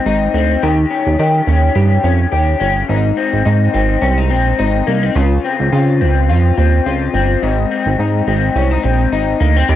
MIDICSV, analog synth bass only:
0, 0, Header, 1, 2, 480
1, 0, Start_track
1, 0, Key_signature, -4, "major"
1, 0, Tempo, 566572
1, 530, Time_signature, 4, 2, 24, 8
1, 8265, End_track
2, 0, Start_track
2, 0, Title_t, "Analog synth bass"
2, 0, Program_c, 0, 38
2, 49, Note_on_c, 0, 32, 84
2, 242, Note_off_c, 0, 32, 0
2, 287, Note_on_c, 0, 38, 91
2, 480, Note_off_c, 0, 38, 0
2, 535, Note_on_c, 0, 39, 127
2, 725, Note_off_c, 0, 39, 0
2, 903, Note_on_c, 0, 39, 98
2, 989, Note_off_c, 0, 39, 0
2, 1011, Note_on_c, 0, 51, 88
2, 1202, Note_off_c, 0, 51, 0
2, 1249, Note_on_c, 0, 39, 83
2, 1441, Note_off_c, 0, 39, 0
2, 1488, Note_on_c, 0, 43, 101
2, 1681, Note_off_c, 0, 43, 0
2, 1726, Note_on_c, 0, 41, 92
2, 1920, Note_off_c, 0, 41, 0
2, 1970, Note_on_c, 0, 39, 97
2, 2162, Note_off_c, 0, 39, 0
2, 2211, Note_on_c, 0, 31, 86
2, 2403, Note_off_c, 0, 31, 0
2, 2452, Note_on_c, 0, 32, 115
2, 2643, Note_off_c, 0, 32, 0
2, 2821, Note_on_c, 0, 32, 87
2, 2908, Note_off_c, 0, 32, 0
2, 2932, Note_on_c, 0, 44, 94
2, 3123, Note_off_c, 0, 44, 0
2, 3173, Note_on_c, 0, 32, 104
2, 3364, Note_off_c, 0, 32, 0
2, 3408, Note_on_c, 0, 36, 112
2, 3648, Note_on_c, 0, 34, 87
2, 3661, Note_off_c, 0, 36, 0
2, 3841, Note_off_c, 0, 34, 0
2, 3894, Note_on_c, 0, 32, 87
2, 4085, Note_off_c, 0, 32, 0
2, 4131, Note_on_c, 0, 36, 88
2, 4323, Note_off_c, 0, 36, 0
2, 4369, Note_on_c, 0, 37, 125
2, 4561, Note_off_c, 0, 37, 0
2, 4744, Note_on_c, 0, 37, 95
2, 4830, Note_off_c, 0, 37, 0
2, 4850, Note_on_c, 0, 49, 95
2, 5091, Note_on_c, 0, 37, 96
2, 5104, Note_off_c, 0, 49, 0
2, 5330, Note_on_c, 0, 41, 96
2, 5343, Note_off_c, 0, 37, 0
2, 5522, Note_off_c, 0, 41, 0
2, 5574, Note_on_c, 0, 39, 82
2, 5765, Note_off_c, 0, 39, 0
2, 5813, Note_on_c, 0, 37, 93
2, 6005, Note_off_c, 0, 37, 0
2, 6048, Note_on_c, 0, 31, 95
2, 6241, Note_off_c, 0, 31, 0
2, 6291, Note_on_c, 0, 32, 115
2, 6483, Note_off_c, 0, 32, 0
2, 6659, Note_on_c, 0, 32, 100
2, 6747, Note_off_c, 0, 32, 0
2, 6767, Note_on_c, 0, 44, 93
2, 6961, Note_off_c, 0, 44, 0
2, 7007, Note_on_c, 0, 32, 104
2, 7201, Note_off_c, 0, 32, 0
2, 7246, Note_on_c, 0, 36, 102
2, 7441, Note_off_c, 0, 36, 0
2, 7492, Note_on_c, 0, 34, 87
2, 7684, Note_off_c, 0, 34, 0
2, 7729, Note_on_c, 0, 32, 88
2, 7922, Note_off_c, 0, 32, 0
2, 7970, Note_on_c, 0, 38, 97
2, 8163, Note_off_c, 0, 38, 0
2, 8209, Note_on_c, 0, 39, 127
2, 8265, Note_off_c, 0, 39, 0
2, 8265, End_track
0, 0, End_of_file